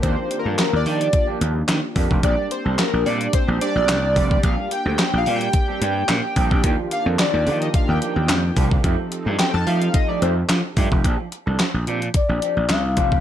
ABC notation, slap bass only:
X:1
M:4/4
L:1/16
Q:1/4=109
K:Bb
V:1 name="Slap bass" clef=bass
E,, z2 G,, z E,, E,2 z2 E,,2 E, z F,, F,,, | B,,, z2 C,, z B,,, B,,2 z B,,, z B,,, C,,2 F,,,2 | B,,, z2 D,, z B,,, B,,2 z2 G,,2 B,, z B,,, B,,, | E,, z2 F,, z E,, E,2 z E,, z E,, F,,2 C,,2 |
F,, z2 G,, z F,, F,2 z2 F,,2 F, z G,, F,,, | B,,, z2 C,, z B,,, B,,2 z B,,, z B,,, C,,2 F,,,2 |]